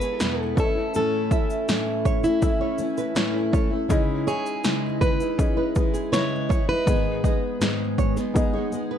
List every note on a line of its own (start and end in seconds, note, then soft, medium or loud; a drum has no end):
0.00 0.20 E3 medium
0.00 0.21 G#3 medium
0.00 0.21 B3 medium
0.00 0.39 B3 medium
0.00 0.21 E4 medium
0.00 0.39 E4 medium
0.00 0.39 G#4 medium
0.00 0.20 G#4 medium
0.00 0.40 B4 loud
0.00 0.57 D#5 medium
0.00 0.42 E5 medium
0.00 shaker medium
0.20 0.57 E2 medium
0.20 0.57 B2 medium
0.20 0.56 E3 medium
0.20 0.58 G#3 medium
0.20 0.58 B3 medium
0.20 0.58 E4 medium
0.20 0.38 B4 medium
0.20 snare loud
0.20 shaker medium
0.40 0.59 A4 loud
0.55 0.76 E3 medium
0.55 0.76 A3 medium
0.55 1.75 C#4 medium
0.55 0.76 C#4 medium
0.55 1.75 E4 medium
0.55 1.75 A4 medium
0.55 0.75 C#5 medium
0.55 0.64 D#5 medium
0.55 kick loud
0.55 shaker medium
0.60 0.74 E4 medium
0.60 0.95 A4 medium
0.64 1.79 E5 medium
0.75 0.94 A3 soft
0.75 0.95 C#4 soft
0.75 0.94 E4 medium
0.94 1.32 A2 medium
0.94 1.30 E3 medium
0.94 1.31 A3 medium
0.94 1.32 C#4 medium
0.94 1.32 E4 medium
0.94 2.29 A4 medium
0.94 shaker medium
1.31 1.68 E3 medium
1.31 1.69 A3 medium
1.31 1.69 C#4 medium
1.31 1.69 E4 medium
1.31 1.49 E5 medium
1.31 kick medium
1.31 shaker medium
1.50 shaker soft
1.68 2.24 A2 medium
1.68 2.24 E3 medium
1.68 2.24 A3 medium
1.68 2.24 C#4 medium
1.68 2.23 E4 medium
1.68 snare loud
1.68 shaker medium
2.05 2.23 C#5 medium
2.05 kick medium
2.05 shaker medium
2.24 2.42 A3 soft
2.24 2.43 C#4 soft
2.24 2.42 E4 medium
2.24 3.31 E4 medium
2.24 shaker soft
2.41 2.61 E3 medium
2.41 2.61 A3 medium
2.41 3.34 C#4 medium
2.41 2.60 C#4 soft
2.41 3.35 E4 medium
2.41 3.35 A4 medium
2.41 3.35 E5 medium
2.41 kick medium
2.41 shaker medium
2.45 2.58 E4 medium
2.60 2.78 A3 soft
2.60 2.79 C#4 medium
2.60 2.79 E4 medium
2.60 2.78 C#5 medium
2.78 3.14 E3 medium
2.78 3.14 A3 medium
2.78 3.15 C#4 medium
2.78 3.15 E4 medium
2.78 shaker medium
2.97 3.16 B4 medium
2.97 shaker medium
3.14 3.52 A2 medium
3.14 3.51 E3 medium
3.14 3.52 A3 medium
3.14 3.53 C#4 medium
3.14 3.53 E4 loud
3.14 3.34 C#5 medium
3.14 snare loud
3.14 shaker medium
3.52 3.71 E3 medium
3.52 3.72 A3 medium
3.52 3.71 C#4 medium
3.52 3.69 E4 medium
3.52 3.71 C#5 medium
3.52 kick medium
3.52 shaker soft
3.71 3.89 A3 soft
3.71 3.89 C#4 soft
3.71 3.89 E4 medium
3.88 4.26 C#3 medium
3.88 4.25 E3 medium
3.88 4.26 G#3 loud
3.88 4.83 C#4 loud
3.88 4.26 D#4 loud
3.88 4.83 E4 medium
3.88 4.28 E4 loud
3.88 4.83 G#4 medium
3.88 4.84 D#5 medium
3.88 kick loud
3.88 shaker medium
4.26 4.63 E3 medium
4.26 4.64 G#3 medium
4.26 4.65 D#4 medium
4.26 4.65 E4 medium
4.26 4.98 G#4 medium
4.26 4.45 C#5 medium
4.26 shaker medium
4.46 shaker soft
4.64 5.20 C#3 medium
4.64 5.20 E3 medium
4.64 5.20 G#3 medium
4.64 5.20 D#4 medium
4.64 5.19 E4 medium
4.64 snare loud
4.64 shaker medium
5.01 6.08 B4 medium
5.01 5.19 B4 medium
5.01 kick medium
5.01 shaker soft
5.20 5.38 G#3 soft
5.20 5.39 D#4 soft
5.20 5.38 E4 medium
5.20 shaker medium
5.38 5.57 E3 soft
5.38 5.57 G#3 soft
5.38 6.31 C#4 medium
5.38 5.57 D#4 medium
5.38 6.31 E4 medium
5.38 5.56 E4 medium
5.38 6.32 G#4 medium
5.38 6.32 D#5 medium
5.38 kick medium
5.38 shaker medium
5.57 5.75 G#3 soft
5.57 5.76 D#4 soft
5.57 5.75 E4 medium
5.57 5.75 B4 medium
5.75 6.13 E3 medium
5.75 6.13 G#3 medium
5.75 6.13 D#4 medium
5.75 6.14 E4 medium
5.75 kick medium
5.75 shaker medium
5.94 6.11 G#4 medium
5.94 shaker medium
6.12 6.50 C#3 medium
6.12 6.49 E3 medium
6.12 6.50 G#3 medium
6.12 6.51 D#4 medium
6.12 6.51 E4 medium
6.12 6.30 B4 medium
6.12 6.68 C#5 loud
6.12 snare loud
6.12 shaker medium
6.49 6.68 E3 medium
6.49 6.69 G#3 medium
6.49 6.69 D#4 medium
6.49 6.67 E4 medium
6.49 6.67 C#5 medium
6.49 kick medium
6.49 shaker soft
6.69 6.87 G#3 soft
6.69 6.88 D#4 medium
6.69 6.87 E4 medium
6.69 8.98 B4 medium
6.86 7.24 G#2 medium
6.86 7.24 D#3 medium
6.86 7.22 G#3 medium
6.86 7.79 B3 medium
6.86 7.23 B3 medium
6.86 7.79 D#4 medium
6.86 7.24 D#4 medium
6.86 7.80 G#4 medium
6.86 7.25 G#4 medium
6.86 7.80 D#5 medium
6.86 kick loud
6.86 shaker medium
7.23 7.60 G#3 medium
7.23 7.60 B3 medium
7.23 7.61 D#4 medium
7.23 7.61 G#4 medium
7.23 7.41 D#5 medium
7.23 kick medium
7.23 shaker soft
7.60 8.16 G#2 medium
7.60 8.16 D#3 medium
7.60 8.17 G#3 medium
7.60 8.17 B3 medium
7.60 8.16 D#4 medium
7.60 8.15 G#4 loud
7.60 snare loud
7.60 shaker medium
7.98 8.16 C#5 medium
7.98 kick medium
7.98 shaker soft
8.16 8.33 G#3 soft
8.16 8.34 B3 soft
8.16 8.35 D#4 soft
8.16 8.35 G#4 medium
8.16 snare soft
8.16 shaker soft
8.34 8.53 G#3 medium
8.34 8.98 B3 medium
8.34 8.54 B3 medium
8.34 8.98 D#4 medium
8.34 8.53 D#4 medium
8.34 8.98 G#4 medium
8.34 8.53 G#4 medium
8.34 8.98 D#5 medium
8.34 kick medium
8.34 shaker medium
8.53 8.71 G#3 soft
8.53 8.72 B3 medium
8.53 8.73 D#4 medium
8.53 8.72 G#4 medium
8.53 8.71 C#5 medium
8.72 8.98 G#3 medium
8.72 8.98 B3 medium
8.72 8.98 D#4 medium
8.72 8.98 G#4 medium
8.72 shaker medium
8.91 8.98 B4 medium